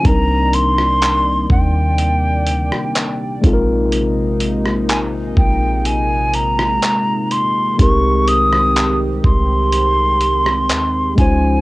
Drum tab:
HH |x-x-x---x-x-x-x-|x-x-x---x-x-x-x-|x-x-x---x-x-x-x-|
CP |----x-------x---|----x-------x---|----x-------x---|
SD |---r-------r----|---r-------r----|---r-------r----|
BD |o-----o-------o-|------o---------|o-----o-------o-|